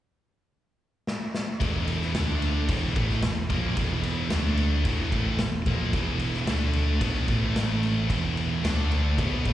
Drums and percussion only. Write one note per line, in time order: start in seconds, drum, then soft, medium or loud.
1.07 snare medium
1.35 snare medium
1.61 kick medium
1.61 ride medium
1.88 ride medium
2.02 snare soft
2.15 snare loud
2.15 ride medium
2.42 ride medium
2.68 kick loud
2.68 ride loud
2.96 kick medium
2.96 ride medium
3.10 snare soft
3.22 snare loud
3.22 ride loud
3.50 kick loud
3.50 ride medium
3.77 kick medium
3.77 ride medium
4.03 ride medium
4.30 snare loud
4.30 ride medium
4.57 ride medium
4.85 kick loud
4.85 ride medium
5.12 kick medium
5.12 ride medium
5.39 snare loud
5.39 ride medium
5.66 kick loud
5.66 ride medium
5.93 kick medium
5.93 ride medium
6.20 ride medium
6.34 snare soft
6.47 snare loud
6.47 ride medium
6.73 ride medium
7.01 kick loud
7.01 ride loud
7.28 kick loud
7.28 ride medium
7.56 snare loud
7.56 ride medium
7.83 ride medium
8.10 kick medium
8.10 ride medium
8.37 ride medium
8.65 snare loud
8.65 ride loud
8.91 ride medium
9.18 kick loud
9.18 ride loud
9.45 kick medium
9.45 ride medium